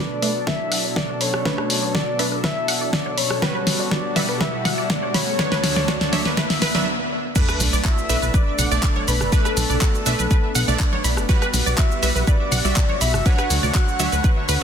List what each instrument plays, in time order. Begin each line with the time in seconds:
Already playing: analog synth pad B2 F#3 D4 A4, supersaw synth A3 D4 B4, soft synth lead D5, riser
0.22 supersaw synth A3 D4 B4, synth pluck E5, open hi-hat
0.35 synth pluck B4
0.47 synth pluck B4, soft synth lead E5, kick, snare
0.72 synth pluck F#5, open hi-hat
0.84 synth pluck D5
0.96 soft synth lead D5, kick, snare
1.09 synth pluck C#5
1.21 soft synth lead C#5, synth pluck B5, open hi-hat
1.34 cross-stick
1.45 supersaw synth A3 D4 B4, synth pluck B4, kick, snare
1.58 synth pluck B4, cross-stick
1.70 open hi-hat
1.83 synth pluck D5
1.94 synth pluck F#4, soft synth lead D5, kick, snare
2.19 supersaw synth A3 D4 B4, synth pluck E5, open hi-hat
2.32 synth pluck B4
2.44 synth pluck B4, soft synth lead E5, kick, snare
2.68 synth pluck F#5, open hi-hat
2.81 synth pluck D5
2.93 soft synth lead D5, kick, snare
3.06 synth pluck C#5
3.18 soft synth lead C#5, synth pluck B5, open hi-hat
3.30 cross-stick
3.42 analog synth pad B2 G3 F#4, supersaw synth G3 F#4 B4, synth pluck B4, kick, snare
3.55 synth pluck B4
3.67 snare, open hi-hat
3.80 synth pluck D5
3.91 synth pluck F#4, soft synth lead D5, kick, snare
4.16 supersaw synth G3 F#4 B4, synth pluck E5, snare, open hi-hat
4.29 synth pluck B4
4.41 synth pluck B4, soft synth lead E5, kick, snare
4.65 synth pluck F#5, snare, open hi-hat
4.78 synth pluck D5
4.90 soft synth lead D5, kick, snare
5.03 synth pluck C#5
5.14 soft synth lead C#5, synth pluck B5, snare, open hi-hat
5.39 analog synth pad D2 D3 A4, supersaw synth F#3 D4 C#5, synth pluck B4, kick, snare
5.52 synth pluck B4, snare
5.64 snare, open hi-hat
5.76 synth pluck D5, snare
5.88 synth pluck F#4, soft synth lead D5, kick, snare
6.01 snare
6.13 supersaw synth F#3 D4 C#5, synth pluck E5, snare, open hi-hat
6.26 synth pluck B4, snare
6.37 synth pluck B4, soft synth lead E5, kick, snare
6.50 snare, open hi-hat
6.62 synth pluck B4, snare, open hi-hat
6.75 supersaw synth F#3 D4 E5, synth pluck B4, snare
7.36 supersaw synth A3 D4 B4, analog synth pad A3 B3 D4, synth pluck B4, kick, crash, sub drop, cabasa
7.48 synth pluck B4, cross-stick, cabasa
7.60 analog synth bass B1, open hi-hat, high conga, cabasa
7.73 analog synth bass B1, synth pluck D5, cabasa
7.85 synth pluck F#4, digital synth lead E5, soft synth lead E5, kick, clap, cabasa
7.98 cabasa
8.09 analog synth bass B1, supersaw synth A3 D4 B4, synth pluck E5, open hi-hat, cabasa
8.22 analog synth bass B1, synth pluck B4, high conga, cabasa
8.34 synth pluck B4, soft synth lead D5, digital synth lead D5, kick, cabasa
8.59 analog synth bass B1, synth pluck F#5, open hi-hat, low conga, cabasa
8.71 analog synth bass B1, supersaw synth A3 D4 D5, synth pluck D5, cabasa
8.83 kick, clap, low conga, cabasa
8.96 synth pluck C#5, high conga
9.08 analog synth bass B1, digital synth lead B4, soft synth lead B4, synth pluck B5, open hi-hat, cabasa
9.21 analog synth bass F#1, cross-stick, low conga, cabasa
9.32 supersaw synth A3 D4 B4, soft synth lead A4, digital synth lead A4, synth pluck B4, kick, cabasa
9.45 synth pluck B4, cross-stick, cabasa
9.57 analog synth bass B1, open hi-hat, high conga, cabasa
9.70 analog synth bass B1, synth pluck D5, low conga, cabasa
9.81 synth pluck F#4, kick, clap, cabasa
9.95 cabasa
10.06 analog synth bass B1, supersaw synth A3 D4 B4, synth pluck E5, open hi-hat, cabasa
10.19 analog synth bass B1, synth pluck B4, high conga, cabasa
10.31 synth pluck B4, kick, cabasa
10.55 analog synth bass B1, synth pluck F#5, open hi-hat, cabasa
10.68 analog synth bass B1, supersaw synth A3 D4 D5, synth pluck D5, low conga, cabasa
10.79 kick, clap, cabasa
10.93 synth pluck C#5, high conga
11.04 analog synth bass B1, synth pluck B5, open hi-hat, cabasa
11.17 analog synth bass F#1, cross-stick, cabasa
11.29 analog synth pad G3 F#4, supersaw synth G3 F#4 B4, synth pluck B4, kick, cabasa
11.42 synth pluck B4, cross-stick, cabasa
11.53 analog synth bass B1, open hi-hat, high conga, cabasa
11.66 analog synth bass B1, synth pluck D5, cabasa
11.78 synth pluck F#4, digital synth lead E5, soft synth lead E5, kick, clap, cabasa
11.91 cabasa
12.03 analog synth bass B1, supersaw synth G3 F#4 B4, synth pluck E5, open hi-hat, cabasa
12.15 analog synth bass B1, synth pluck B4, high conga, cabasa
12.27 synth pluck B4, digital synth lead D5, soft synth lead D5, kick, cabasa
12.51 analog synth bass B1, synth pluck F#5, open hi-hat, low conga, cabasa
12.65 analog synth bass B1, supersaw synth G3 F#4 E5, synth pluck D5, cabasa
12.76 kick, clap, low conga, cabasa
12.89 synth pluck C#5, high conga
13.01 analog synth bass B1, digital synth lead E5, soft synth lead E5, synth pluck B5, open hi-hat, cabasa
13.14 analog synth bass F#1, cross-stick, low conga, cabasa
13.26 analog synth pad D3 A3 C#5, supersaw synth F#3 D4 C#5, synth pluck B4, soft synth lead F#5, digital synth lead F#5, kick, cabasa
13.38 synth pluck B4, cross-stick, cabasa
13.50 analog synth bass D2, open hi-hat, high conga, cabasa
13.63 analog synth bass D2, synth pluck D5, low conga, cabasa
13.75 synth pluck F#4, kick, clap, cabasa
13.88 cabasa
13.99 analog synth bass D2, supersaw synth F#3 D4 C#5, synth pluck E5, open hi-hat, cabasa
14.12 analog synth bass D2, synth pluck B4, high conga, cabasa
14.24 synth pluck B4, kick, cabasa
14.49 analog synth bass D2, synth pluck B4, open hi-hat, cabasa